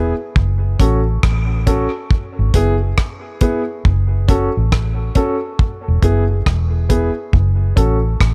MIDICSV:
0, 0, Header, 1, 4, 480
1, 0, Start_track
1, 0, Key_signature, 3, "minor"
1, 0, Tempo, 871713
1, 197, Time_signature, 4, 2, 24, 8
1, 4594, End_track
2, 0, Start_track
2, 0, Title_t, "Grand piano"
2, 0, Program_c, 0, 0
2, 0, Note_on_c, 0, 59, 91
2, 0, Note_on_c, 0, 64, 75
2, 0, Note_on_c, 0, 68, 94
2, 63, Note_off_c, 0, 59, 0
2, 65, Note_off_c, 0, 64, 0
2, 66, Note_off_c, 0, 68, 0
2, 437, Note_on_c, 0, 61, 83
2, 442, Note_on_c, 0, 66, 76
2, 444, Note_on_c, 0, 69, 80
2, 544, Note_off_c, 0, 61, 0
2, 546, Note_off_c, 0, 66, 0
2, 547, Note_off_c, 0, 69, 0
2, 917, Note_on_c, 0, 61, 91
2, 921, Note_on_c, 0, 66, 84
2, 922, Note_on_c, 0, 69, 90
2, 1024, Note_off_c, 0, 61, 0
2, 1026, Note_off_c, 0, 66, 0
2, 1027, Note_off_c, 0, 69, 0
2, 1399, Note_on_c, 0, 59, 83
2, 1402, Note_on_c, 0, 64, 74
2, 1405, Note_on_c, 0, 68, 99
2, 1505, Note_off_c, 0, 59, 0
2, 1507, Note_off_c, 0, 64, 0
2, 1508, Note_off_c, 0, 68, 0
2, 1879, Note_on_c, 0, 59, 89
2, 1881, Note_on_c, 0, 64, 81
2, 1884, Note_on_c, 0, 68, 95
2, 1985, Note_off_c, 0, 59, 0
2, 1986, Note_off_c, 0, 64, 0
2, 1988, Note_off_c, 0, 68, 0
2, 2357, Note_on_c, 0, 61, 89
2, 2362, Note_on_c, 0, 66, 82
2, 2365, Note_on_c, 0, 69, 90
2, 2464, Note_off_c, 0, 61, 0
2, 2467, Note_off_c, 0, 66, 0
2, 2468, Note_off_c, 0, 69, 0
2, 2837, Note_on_c, 0, 61, 85
2, 2842, Note_on_c, 0, 66, 80
2, 2843, Note_on_c, 0, 69, 92
2, 2944, Note_off_c, 0, 61, 0
2, 2947, Note_off_c, 0, 66, 0
2, 2947, Note_off_c, 0, 69, 0
2, 3316, Note_on_c, 0, 59, 82
2, 3320, Note_on_c, 0, 64, 79
2, 3324, Note_on_c, 0, 68, 96
2, 3424, Note_off_c, 0, 59, 0
2, 3426, Note_off_c, 0, 64, 0
2, 3428, Note_off_c, 0, 68, 0
2, 3473, Note_on_c, 0, 64, 22
2, 3473, Note_on_c, 0, 68, 25
2, 3506, Note_off_c, 0, 64, 0
2, 3506, Note_off_c, 0, 68, 0
2, 3795, Note_on_c, 0, 59, 87
2, 3799, Note_on_c, 0, 64, 74
2, 3800, Note_on_c, 0, 68, 95
2, 3903, Note_off_c, 0, 59, 0
2, 3905, Note_off_c, 0, 64, 0
2, 3906, Note_off_c, 0, 68, 0
2, 4273, Note_on_c, 0, 61, 79
2, 4277, Note_on_c, 0, 66, 75
2, 4279, Note_on_c, 0, 69, 90
2, 4382, Note_off_c, 0, 61, 0
2, 4384, Note_off_c, 0, 66, 0
2, 4385, Note_off_c, 0, 69, 0
2, 4594, End_track
3, 0, Start_track
3, 0, Title_t, "Fingered electric bass"
3, 0, Program_c, 1, 33
3, 0, Note_on_c, 1, 28, 94
3, 65, Note_off_c, 1, 28, 0
3, 200, Note_on_c, 1, 30, 91
3, 412, Note_off_c, 1, 30, 0
3, 439, Note_on_c, 1, 33, 106
3, 651, Note_off_c, 1, 33, 0
3, 679, Note_on_c, 1, 33, 94
3, 1026, Note_off_c, 1, 33, 0
3, 1315, Note_on_c, 1, 32, 90
3, 1390, Note_off_c, 1, 32, 0
3, 1400, Note_on_c, 1, 30, 81
3, 1612, Note_off_c, 1, 30, 0
3, 2121, Note_on_c, 1, 30, 93
3, 2467, Note_off_c, 1, 30, 0
3, 2517, Note_on_c, 1, 33, 74
3, 2805, Note_off_c, 1, 33, 0
3, 3239, Note_on_c, 1, 28, 80
3, 3313, Note_off_c, 1, 28, 0
3, 3319, Note_on_c, 1, 30, 76
3, 3531, Note_off_c, 1, 30, 0
3, 3561, Note_on_c, 1, 28, 92
3, 3907, Note_off_c, 1, 28, 0
3, 4039, Note_on_c, 1, 30, 106
3, 4251, Note_off_c, 1, 30, 0
3, 4280, Note_on_c, 1, 33, 97
3, 4492, Note_off_c, 1, 33, 0
3, 4520, Note_on_c, 1, 33, 93
3, 4594, Note_off_c, 1, 33, 0
3, 4594, End_track
4, 0, Start_track
4, 0, Title_t, "Drums"
4, 197, Note_on_c, 9, 36, 105
4, 253, Note_off_c, 9, 36, 0
4, 438, Note_on_c, 9, 36, 76
4, 438, Note_on_c, 9, 42, 73
4, 493, Note_off_c, 9, 36, 0
4, 494, Note_off_c, 9, 42, 0
4, 679, Note_on_c, 9, 36, 96
4, 679, Note_on_c, 9, 37, 90
4, 734, Note_off_c, 9, 36, 0
4, 734, Note_off_c, 9, 37, 0
4, 919, Note_on_c, 9, 42, 64
4, 920, Note_on_c, 9, 36, 73
4, 974, Note_off_c, 9, 42, 0
4, 975, Note_off_c, 9, 36, 0
4, 1159, Note_on_c, 9, 36, 100
4, 1214, Note_off_c, 9, 36, 0
4, 1398, Note_on_c, 9, 36, 83
4, 1398, Note_on_c, 9, 42, 70
4, 1453, Note_off_c, 9, 36, 0
4, 1453, Note_off_c, 9, 42, 0
4, 1639, Note_on_c, 9, 37, 103
4, 1640, Note_on_c, 9, 36, 104
4, 1694, Note_off_c, 9, 37, 0
4, 1695, Note_off_c, 9, 36, 0
4, 1876, Note_on_c, 9, 42, 65
4, 1879, Note_on_c, 9, 36, 80
4, 1932, Note_off_c, 9, 42, 0
4, 1934, Note_off_c, 9, 36, 0
4, 2120, Note_on_c, 9, 36, 91
4, 2175, Note_off_c, 9, 36, 0
4, 2360, Note_on_c, 9, 36, 85
4, 2360, Note_on_c, 9, 42, 72
4, 2415, Note_off_c, 9, 36, 0
4, 2415, Note_off_c, 9, 42, 0
4, 2600, Note_on_c, 9, 36, 98
4, 2602, Note_on_c, 9, 37, 98
4, 2655, Note_off_c, 9, 36, 0
4, 2657, Note_off_c, 9, 37, 0
4, 2837, Note_on_c, 9, 42, 60
4, 2839, Note_on_c, 9, 36, 78
4, 2892, Note_off_c, 9, 42, 0
4, 2894, Note_off_c, 9, 36, 0
4, 3079, Note_on_c, 9, 36, 103
4, 3134, Note_off_c, 9, 36, 0
4, 3318, Note_on_c, 9, 36, 81
4, 3318, Note_on_c, 9, 42, 66
4, 3373, Note_off_c, 9, 36, 0
4, 3373, Note_off_c, 9, 42, 0
4, 3559, Note_on_c, 9, 36, 104
4, 3561, Note_on_c, 9, 37, 97
4, 3614, Note_off_c, 9, 36, 0
4, 3616, Note_off_c, 9, 37, 0
4, 3799, Note_on_c, 9, 36, 85
4, 3799, Note_on_c, 9, 42, 66
4, 3854, Note_off_c, 9, 36, 0
4, 3854, Note_off_c, 9, 42, 0
4, 4038, Note_on_c, 9, 36, 96
4, 4093, Note_off_c, 9, 36, 0
4, 4278, Note_on_c, 9, 36, 86
4, 4280, Note_on_c, 9, 42, 68
4, 4333, Note_off_c, 9, 36, 0
4, 4335, Note_off_c, 9, 42, 0
4, 4518, Note_on_c, 9, 36, 106
4, 4521, Note_on_c, 9, 37, 94
4, 4573, Note_off_c, 9, 36, 0
4, 4576, Note_off_c, 9, 37, 0
4, 4594, End_track
0, 0, End_of_file